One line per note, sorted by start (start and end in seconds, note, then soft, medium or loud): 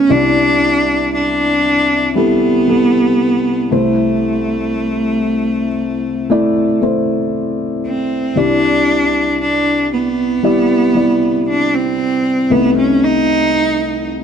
0.00 0.11 A3 medium
0.00 0.12 C#4 loud
0.00 0.11 D#4 medium
0.00 0.11 B4 loud
0.09 3.68 C2 medium
0.09 3.68 C3 medium
0.09 2.06 G3 medium
0.09 1.13 D4 loud
0.09 2.06 E4 medium
0.09 2.06 D5 medium
1.14 2.13 D4 loud
2.15 2.65 G3 medium
2.15 3.74 B3 loud
2.15 2.66 E4 medium
2.15 2.66 A4 medium
2.67 3.71 G3 medium
2.67 3.70 E4 medium
2.67 3.72 A4 medium
3.71 7.81 C2 medium
3.71 7.81 C3 medium
3.71 5.68 A3 medium
3.71 6.82 A3 medium
3.71 5.68 E4 medium
3.71 5.68 C5 medium
6.30 6.79 A3 medium
6.30 6.79 E4 medium
6.30 6.80 D5 loud
6.81 8.29 A3 medium
6.81 8.29 E4 medium
6.81 8.30 C5 medium
7.86 8.39 C4 medium
8.36 12.46 C2 medium
8.36 12.46 C3 medium
8.36 10.33 G3 medium
8.36 9.40 D4 loud
8.36 10.33 E4 medium
8.36 10.34 D5 medium
9.41 9.89 D4 medium
9.93 11.44 B3 medium
10.43 10.92 G3 medium
10.43 10.93 E4 medium
10.43 10.93 D5 medium
10.95 12.42 G3 medium
10.95 12.43 E4 medium
10.95 12.43 D5 medium
11.49 11.75 D4 loud
11.74 12.53 C4 loud
12.50 14.24 C2 medium
12.50 14.24 C3 medium
12.50 14.24 A3 medium
12.50 12.77 B3 loud
12.50 14.24 D#4 medium
12.50 14.24 B4 medium
12.78 13.05 C#4 medium
13.03 14.06 D#4 loud